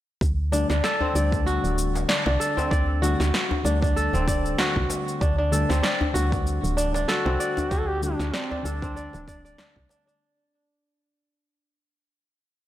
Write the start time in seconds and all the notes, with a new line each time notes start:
0.21 D2, kick, cabasa
0.52 D3 G3 A3 D4, djembe tone, cabasa
0.70 D2 D4, snare, djembe slap, cabasa
0.84 A4, snare, cabasa
1.01 C4, djembe bass
1.13 D2 D3 G3 A3 D4 D5, cabasa
1.32 kick, djembe tone, cabasa
1.46 F#4, cabasa
1.64 D1, cabasa
1.78 cabasa
1.95 djembe slap, cabasa
2.09 D4, snare, cabasa
2.26 C2 D4, djembe slap
2.40 A4, cabasa
2.57 C4, djembe slap, djembe bass, cabasa
2.71 D2 D5, kick, cabasa
3.02 D3 G3 A3 D4 F#4, djembe tone, cabasa
3.20 D2, snare, djembe slap, cabasa
3.34 snare, cabasa
3.51 djembe bass
3.63 D2 D3 G3 A3 D4, djembe slap, cabasa
3.82 D4, kick, djembe tone, cabasa
3.96 A4, cabasa
4.13 D1 C4, djembe bass, cabasa
4.28 D5, kick, cabasa
4.46 cabasa
4.58 F#4, snare, djembe tone, cabasa
4.75 C2, kick, djembe tone
4.90 djembe slap, cabasa
5.08 cabasa
5.21 D2 D4, kick, cabasa
5.38 D4
5.52 D3 G3 A3 D4 A4, djembe tone, cabasa
5.69 D2 C4, snare, djembe slap, cabasa
5.83 D5, snare, cabasa
6.01 djembe bass
6.13 D2 D3 G3 A3 F#4, cabasa
6.18 D4
6.32 kick, djembe tone, cabasa
6.47 cabasa
6.64 D1, cabasa
6.77 D4, cabasa
6.94 D4, djembe slap, cabasa
7.08 F#4 A4, snare, cabasa
7.25 C2 C4, djembe slap
7.40 D5, cabasa
7.57 djembe slap, djembe bass, cabasa
7.71 D2 F#4 G4, kick, cabasa
7.79 A4
7.88 G4
8.02 D3 G3 A3 D4, djembe tone, cabasa
8.19 D2, snare, djembe slap, cabasa
8.34 C4 D4, snare, cabasa
8.51 D4, djembe bass
8.63 D2 D3 G3 A3 D4 A4, djembe slap, cabasa
8.82 C4, kick, djembe tone, cabasa
8.96 D5, cabasa
9.13 D1, djembe bass, cabasa
9.28 D5, kick, cabasa
9.45 D5, cabasa
9.58 D4, snare, djembe tone, cabasa
9.76 C2, kick, djembe tone
9.89 D4, djembe slap, cabasa
10.07 D4, cabasa